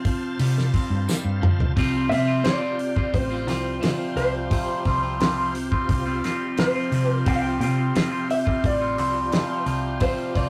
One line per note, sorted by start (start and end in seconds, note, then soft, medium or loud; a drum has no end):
0.00 0.73 C3 medium
0.00 0.72 C4 medium
0.00 1.73 C5 medium
0.00 1.73 F5 medium
0.00 1.74 A5 medium
0.05 1.41 F3 medium
0.05 kick medium
0.05 open hi-hat medium
0.39 0.71 C3 medium
0.39 1.07 G3 medium
0.39 open hi-hat medium
0.58 snare soft
0.74 1.77 C4 medium
0.74 kick medium
0.74 open hi-hat medium
0.90 1.06 G2 medium
1.08 1.76 G3 medium
1.08 snare medium
1.08 tambourine medium
1.24 1.40 G2 medium
1.42 1.75 F3 medium
1.42 mid tom medium
1.59 1.75 C2 medium
1.59 floor tom medium
1.76 2.11 C2 medium
1.76 2.43 C3 medium
1.76 2.10 F3 medium
1.76 2.11 G3 medium
1.76 2.11 C4 medium
1.76 10.49 F4 medium
1.76 2.12 F4 medium
1.76 10.49 G4 soft
1.76 10.49 C5 medium
1.76 kick medium
1.76 open hi-hat medium
2.09 2.41 C3 medium
2.09 2.44 F3 medium
2.09 2.29 G3 medium
2.09 2.28 C4 medium
2.09 2.27 F4 medium
2.09 2.46 E5 medium
2.09 open hi-hat soft
2.27 2.44 G3 soft
2.27 2.44 C4 medium
2.27 2.45 F4 medium
2.43 3.80 C3 medium
2.43 2.79 F3 medium
2.43 2.62 G3 medium
2.43 2.61 C4 medium
2.43 2.61 F4 medium
2.43 3.15 D5 medium
2.43 snare loud
2.43 open hi-hat medium
2.61 2.79 G3 medium
2.61 2.80 C4 medium
2.61 2.80 F4 medium
2.79 muted clean electric guitar stroke soft
2.79 open hi-hat soft
2.96 3.32 G3 soft
2.96 3.31 C4 medium
2.96 3.30 F4 medium
2.96 kick medium
3.13 3.47 A1 medium
3.13 4.16 C5 medium
3.13 kick loud
3.13 open hi-hat medium
3.30 3.47 G3 medium
3.30 3.48 C4 medium
3.30 3.49 F4 medium
3.47 3.79 C2 medium
3.47 3.81 F3 medium
3.47 3.82 G3 medium
3.47 3.82 C4 medium
3.47 3.83 F4 medium
3.47 snare soft
3.47 open hi-hat soft
3.81 4.50 C3 medium
3.81 4.15 F3 medium
3.81 4.00 G3 medium
3.81 3.98 C4 medium
3.81 3.97 F4 medium
3.81 snare medium
3.81 open hi-hat medium
3.98 4.16 G3 medium
3.98 4.17 C4 medium
3.98 4.16 F4 medium
4.15 4.51 C2 medium
4.15 4.50 F3 medium
4.15 4.51 G3 medium
4.15 4.51 C4 medium
4.15 4.52 F4 medium
4.15 6.19 C5 medium
4.15 open hi-hat soft
4.50 4.67 A1 medium
4.50 5.19 C3 medium
4.50 4.85 F3 medium
4.50 4.86 G3 medium
4.50 4.86 C4 medium
4.50 4.87 F4 medium
4.50 kick loud
4.50 open hi-hat medium
4.85 5.85 C2 medium
4.85 5.20 F3 medium
4.85 5.04 G3 medium
4.85 5.03 C4 medium
4.85 5.02 F4 medium
4.85 kick medium
4.85 open hi-hat soft
5.03 5.20 G3 soft
5.03 5.21 C4 medium
5.03 5.21 F4 medium
5.19 6.57 C3 medium
5.19 5.54 F3 medium
5.19 5.39 G3 medium
5.19 5.38 C4 medium
5.19 5.37 F4 medium
5.19 snare medium
5.19 open hi-hat medium
5.37 5.55 G3 medium
5.37 5.55 C4 medium
5.37 5.55 F4 medium
5.55 muted clean electric guitar stroke soft
5.55 open hi-hat soft
5.71 6.07 G3 medium
5.71 6.06 C4 medium
5.71 6.05 F4 medium
5.71 kick medium
5.89 6.20 C2 medium
5.89 kick medium
5.89 open hi-hat medium
6.06 6.24 G3 medium
6.06 6.24 C4 medium
6.06 6.25 F4 medium
6.24 6.58 F3 medium
6.24 6.58 G3 medium
6.24 6.59 C4 medium
6.24 6.59 F4 medium
6.24 snare soft
6.24 open hi-hat soft
6.57 7.25 C3 medium
6.57 6.92 F3 medium
6.57 6.76 G3 medium
6.57 6.75 C4 medium
6.57 6.74 F4 medium
6.57 7.12 C5 medium
6.57 snare medium
6.57 open hi-hat medium
6.74 6.93 G3 soft
6.74 6.93 C4 medium
6.74 6.94 F4 medium
6.92 7.23 C3 medium
6.92 7.26 F3 medium
6.92 7.27 G3 medium
6.92 7.26 C4 medium
6.92 7.27 F4 medium
6.92 open hi-hat medium
7.12 7.29 A#4 medium
7.26 7.61 C2 medium
7.26 7.94 C3 medium
7.26 7.61 F3 medium
7.26 7.61 G3 medium
7.26 7.62 C4 medium
7.26 7.62 F4 medium
7.26 7.34 G5 medium
7.26 kick loud
7.26 open hi-hat medium
7.36 7.41 F5 medium
7.42 7.59 G5 loud
7.60 7.91 C3 medium
7.60 7.95 F3 medium
7.60 7.79 G3 medium
7.60 7.78 C4 medium
7.60 7.77 F4 medium
7.60 8.32 G5 medium
7.60 open hi-hat soft
7.78 7.95 G3 soft
7.78 7.96 C4 medium
7.78 7.96 F4 medium
7.94 9.31 C3 medium
7.94 8.29 F3 medium
7.94 8.13 G3 medium
7.94 8.12 C4 medium
7.94 8.11 F4 medium
7.94 snare loud
7.94 open hi-hat medium
8.12 8.29 G3 medium
8.12 8.29 C4 medium
8.12 8.29 F4 medium
8.29 8.66 E5 medium
8.29 muted clean electric guitar stroke soft
8.29 open hi-hat soft
8.46 8.82 G3 medium
8.46 8.81 C4 medium
8.46 8.80 F4 medium
8.46 kick medium
8.64 8.98 A1 medium
8.64 9.65 D5 medium
8.64 kick loud
8.64 open hi-hat medium
8.81 8.98 G3 medium
8.81 8.98 C4 medium
8.81 8.99 F4 medium
8.97 9.29 C2 medium
8.97 9.31 F3 medium
8.97 9.32 G3 medium
8.97 9.33 C4 medium
8.97 9.33 F4 medium
8.97 open hi-hat soft
9.31 9.99 C3 medium
9.31 9.65 F3 medium
9.31 9.50 G3 medium
9.31 9.50 C4 medium
9.31 9.48 F4 medium
9.31 snare loud
9.31 open hi-hat medium
9.49 9.66 G3 medium
9.49 9.66 C4 medium
9.49 9.67 F4 medium
9.65 10.01 C2 medium
9.65 10.00 F3 medium
9.65 10.01 G3 medium
9.65 10.01 C4 medium
9.65 10.01 F4 medium
9.65 open hi-hat soft
10.00 10.17 A1 loud
10.00 10.49 C3 medium
10.00 10.34 F3 medium
10.00 10.34 G3 medium
10.00 10.35 C4 medium
10.00 10.35 F4 medium
10.00 10.37 C5 medium
10.00 kick loud
10.00 open hi-hat medium
10.34 10.49 C2 medium
10.34 10.49 F3 medium
10.34 10.49 G3 medium
10.34 10.49 C4 medium
10.34 10.49 F4 medium
10.34 10.49 D5 medium
10.34 kick medium
10.34 open hi-hat soft